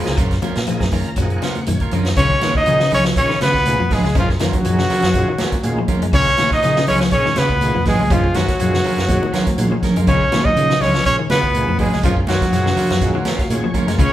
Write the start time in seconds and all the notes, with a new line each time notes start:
Already playing: F3 A#3 D#4 G#4
0.06 C#2, snare, closed hi-hat
0.17 F#2 C#4 F4 A#4, muted clean electric guitar stroke, kick, closed hi-hat, shekere
0.31 kick, snare, closed hi-hat
0.42 F3 C#4 F4 A#4, closed hi-hat, high conga, shekere
0.55 A#2, snare, closed hi-hat
0.67 F3 A#3 D#4 G#4, closed hi-hat, high conga, shekere
0.80 F#2, kick, snare, closed hi-hat, high conga
0.91 D#3 C#4 F4 A#4 A#5, kick, open hi-hat, shekere
1.05 closed hi-hat
1.16 F#2 F3 F#3 A#3 D#4 G#4 F#5, kick, closed hi-hat, high conga, shekere
1.30 closed hi-hat
1.42 C#3 C#4 F4 A#4, snare, closed hi-hat, shekere
1.55 closed hi-hat, high conga
1.66 F#2 D#3 C#5, closed hi-hat, high conga, shekere
1.80 F4 A#4, kick, closed hi-hat
1.91 F#2 F3 C#4 F4 A#4 D#5, closed hi-hat, low conga, shekere
2.05 snare, closed hi-hat, low conga
2.16 C#2 C#3 D#3 G#3 C#4 F4 B4 C#5, kick, closed hi-hat, shekere
2.30 kick
2.41 A#2 D#3 G#3 F4 B4, muted clean electric guitar stroke, snare, closed hi-hat, high conga, shekere
2.55 D#4 D#5, kick
2.66 C#3 D#3 F3 G#3 C#4 F4, closed hi-hat, shekere
2.80 C#3, snare
2.91 C#2 G#3 C#4 F4 B4 C#5, open hi-hat, low conga, shekere
3.05 F3, snare
3.16 D#3 G#3 C#4 F4 C#5, kick, closed hi-hat, shekere
3.30 D#3 C#4 F4 B4, snare
3.41 C#3 G#3 B3 C#4 F4 B4, snare, closed hi-hat, high conga, shekere
3.54 C#2, kick, snare
3.65 D#3 G#3 C#4 F4, closed hi-hat, high conga, shekere
3.80 F2 F3, high conga
3.91 G#1 G#3 C#4 F4 G#4 B4, kick, snare, open hi-hat, high conga, low conga, shekere
4.04 C#2 G#3, snare
4.15 F#2 C#3 D#3 F3 G#3 C#4 F4 A#4, kick, closed hi-hat, shekere
4.29 kick, snare
4.39 F#2 D#3 F#3 C#4 F4 F#4 A#4, snare, closed hi-hat, high conga, shekere
4.53 kick, closed hi-hat, low conga
4.65 F#2 D#3 F3 G#3 C#4 D#4, closed hi-hat, shekere
4.78 C#3, snare
4.90 C#4 F4 A#4, snare, open hi-hat, low conga, shekere
5.02 F#2 F3, snare, closed hi-hat
5.13 D#3 G#3 C#4 F4, kick, closed hi-hat, shekere
5.28 D#3
5.38 C#4 F4 A#4, snare, closed hi-hat, high conga, shekere
5.52 muted fingered electric bass stroke, kick, closed hi-hat
5.63 A#2 D#3 G#3 C#4 F4, closed hi-hat, high conga, shekere
5.78 F3, high conga
5.88 C#4 F4 A#4, kick, closed hi-hat, high conga, low conga, shekere
6.02 F#2 G#3, closed hi-hat
6.13 C#2 C#3 D#3 G#3 C#4 F4 B4 C#5, kick, closed hi-hat, shekere
6.26 kick
6.37 A#2 D#3 C#4 F4 B4, snare, closed hi-hat, high conga
6.51 D#4 D#5, kick, snare
6.63 C#3 D#3 F3 G#3 C#4 F4, snare, closed hi-hat, shekere
6.76 C#3, snare
6.87 C#2 G#3 C#4 F4 B4 C#5, open hi-hat, low conga, shekere
7.00 F3, snare
7.11 D#3 G#3 C#4 G#4 C#5, kick, closed hi-hat, shekere
7.25 D#3, snare, high conga
7.36 C#3 G#3 B3 C#4 F4 B4, snare, closed hi-hat, high conga, shekere
7.50 C#2, kick
7.61 D#3 G#3 C#4 F4, closed hi-hat, high conga, shekere
7.75 F2 F3
7.85 G#1 G#3 C#4 F4 G#4 B4, kick, snare, open hi-hat, high conga, low conga, shekere
8.00 C#2 G#3
8.10 F#2 C#3 D#3 F3 G#3 C#4 F4, muted clean electric guitar stroke, kick, closed hi-hat, shekere
8.24 kick
8.34 F#2 D#3 F#3 C#4 F#4 A#4, muted clean electric guitar stroke, snare, closed hi-hat, high conga, shekere
8.48 kick, snare, closed hi-hat
8.59 F#2 D#3 F3 G#3 C#4 F4, closed hi-hat, shekere
8.73 C#3, snare
8.84 C#4 F4 A#4, open hi-hat, low conga, shekere
8.98 F#2, snare, closed hi-hat
9.09 D#3 G#3 C#4 F#4, kick, closed hi-hat, high conga, shekere
9.23 D#3, high conga
9.33 C#4 F4 A#4, snare, closed hi-hat, low conga, shekere
9.47 muted fingered electric bass stroke, kick, closed hi-hat, high conga
9.58 A#2 D#3 G#3 C#4 F4, closed hi-hat, low conga, shekere
9.72 F3
9.83 C#4 A#4, kick, snare, closed hi-hat, low conga, shekere
9.96 F#2 G#3 F4 A#4, closed hi-hat, low conga
10.07 C#2 C#3 D#3 G#3 C#4 F4 B4 C#5, kick, closed hi-hat, shekere
10.21 kick
10.32 A#2 D#3 G#3 C#4 F4 B4, snare, closed hi-hat, high conga, shekere
10.45 D#4 D#5, kick, low conga
10.56 C#3 D#3 F3 G#3 C#4 F4, closed hi-hat, shekere
10.70 C#3, snare
10.80 C#2 G#3 C#4 F4 B4 C#5, snare, open hi-hat, low conga, shekere
10.94 F3, snare
11.05 D#3 G#3 C#4 F4 C#5, kick, closed hi-hat, shekere
11.19 D#3
11.29 C#3 G#3 B3 C#4 F4 B4, snare, closed hi-hat, high conga, shekere
11.43 C#2, kick
11.54 D#3 G#3 C#4 F4, closed hi-hat, high conga, shekere
11.67 F2 F3, high conga
11.79 G#1 G#3 C#4 F4 G#4 B4, kick, open hi-hat, high conga, low conga, shekere
11.93 C#2 G#3, snare
12.03 F#2 C#3 D#3 F3 G#3 C#4 F4 A#4, kick, closed hi-hat, shekere
12.17 kick
12.27 F#2 D#3 F#3 C#4 F4 F#4 A#4, snare, closed hi-hat, high conga, shekere
12.41 kick, snare, closed hi-hat, low conga
12.53 F#2 D#3 F3 G#3 C#4 F4, snare, closed hi-hat, shekere
12.66 C#3, snare
12.76 C#4 F4 A#4, snare, open hi-hat, low conga, shekere
12.90 F#2 F3, snare, closed hi-hat
13.01 D#3 G#3 C#4 F4, kick, closed hi-hat, shekere
13.14 D#3 F4 A#4, high conga
13.25 C#4 F4 A#4 F5, snare, closed hi-hat, high conga, shekere
13.39 muted fingered electric bass stroke, kick, snare, closed hi-hat
13.50 A#2 D#3 G#3 C#4 F4 C#5, closed hi-hat, high conga, shekere
13.64 F3
13.74 C#4 F4 A#4, kick, closed hi-hat, high conga, low conga, shekere
13.87 F#2 G#3 F4 A#4, snare, closed hi-hat
13.99 C#2 C#3 D#3 G#3 C#4 F4 B4 C#5, kick, closed hi-hat, shekere